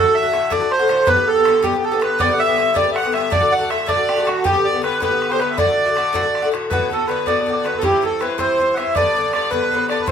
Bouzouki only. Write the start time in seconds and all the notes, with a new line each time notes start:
0.04 D3 A3 F#4
0.23 D3 A3 F#4
0.31 A2 D3 A3 F#4
0.50 A2 D3 A3 F#4
0.60 D3 A3 F#4
0.79 D3 A3 F#4
0.88 A2 D3 A3 F#4
1.06 G2 D3 B3 G4
1.17 D3 B3 G4
1.36 D3 B3 G4
1.45 G2 D3 B3 G4
1.63 G2 D3 B3 G4
1.73 D3 B3 G4
1.92 D3 B3 G4
2.00 G2 D3 B3 G4
2.19 G2 D3 B3 G4
2.29 D3 B3 G4
2.47 D3 B3 G4
2.56 G2 D3 B3 G4
2.74 G2 D3 B3 G4
2.83 D3 B3 G4
3.03 D3 B3 G4
3.12 G2 D3 B3 G4
3.30 A2 D3 A3 F#4
3.40 D3 A3 F#4
3.59 D3 A3 F#4
3.69 A2 D3 A3 F#4
3.86 A2 D3 A3 F#4
3.97 D3 A3 F#4
4.17 D3 A3 F#4
4.25 A2 D3 A3 F#4
4.44 G2 D3 B3 G4
4.54 D3 B3 G4
4.73 D3 B3 G4
4.82 G2 D3 B3 G4
5.00 G2 D3 B3 G4
5.10 D3 B3 G4
5.30 D3 B3 G4
5.38 G2 D3 B3 G4
5.58 A2 D3 A3 F#4
5.67 D3 A3 F#4
5.86 D3 A3 F#4
5.94 A2 D3 A3 F#4
6.13 A2 D3 A3 F#4
6.23 D3 A3 F#4
6.42 D3 A3 F#4
6.51 A2 D3 A3 F#4
6.70 A2 D3 B3 F#4
6.90 A2 D3 B3 F#4
7.08 A2 D3 B3 F#4
7.26 A2 D3 B3 F#4
7.46 A2 D3 B3 F#4
7.64 A2 D3 B3 F#4
7.82 G2 E3 C4 E4
8.02 G2 E3 C4 E4
8.19 G2 E3 C4 E4
8.38 G2 E3 C4 E4
8.58 G2 E3 C4 E4
8.76 G2 E3 C4 E4
8.95 G2 D3 B3 D4
9.15 G2 D3 B3 D4
9.33 G2 D3 B3 D4
9.51 G2 D3 B3 D4
9.71 G2 D3 B3 D4
9.89 G2 D3 B3 D4
10.06 G2 E3 C4